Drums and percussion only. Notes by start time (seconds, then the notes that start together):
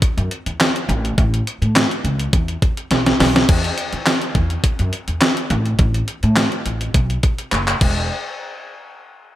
0.02 kick, closed hi-hat
0.18 closed hi-hat
0.31 closed hi-hat
0.46 closed hi-hat
0.60 snare, clap, closed hi-hat
0.76 closed hi-hat
0.89 closed hi-hat
1.05 closed hi-hat
1.18 kick, closed hi-hat
1.34 closed hi-hat
1.47 closed hi-hat
1.62 closed hi-hat
1.76 snare, clap, closed hi-hat
1.91 closed hi-hat
2.05 closed hi-hat
2.20 closed hi-hat
2.33 kick, closed hi-hat
2.48 closed hi-hat
2.62 kick, closed hi-hat
2.77 closed hi-hat
2.91 snare, closed hi-hat
3.06 snare, closed hi-hat
3.20 snare, open hi-hat
3.36 snare, closed hi-hat
3.49 kick, closed hi-hat, crash
3.64 closed hi-hat
3.78 closed hi-hat
3.93 closed hi-hat
4.07 snare, clap, closed hi-hat
4.22 closed hi-hat
4.35 kick, closed hi-hat
4.50 closed hi-hat
4.64 kick, closed hi-hat
4.79 closed hi-hat
4.93 closed hi-hat
5.08 closed hi-hat
5.21 snare, clap, closed hi-hat
5.37 closed hi-hat
5.50 closed hi-hat
5.66 closed hi-hat
5.79 kick, closed hi-hat
5.94 closed hi-hat
6.08 closed hi-hat
6.23 closed hi-hat
6.36 snare, clap, closed hi-hat
6.52 closed hi-hat
6.66 closed hi-hat
6.81 closed hi-hat
6.94 kick, closed hi-hat
7.10 closed hi-hat
7.23 kick, closed hi-hat
7.38 closed hi-hat
7.52 clap, closed hi-hat
7.68 clap, closed hi-hat
7.81 kick, crash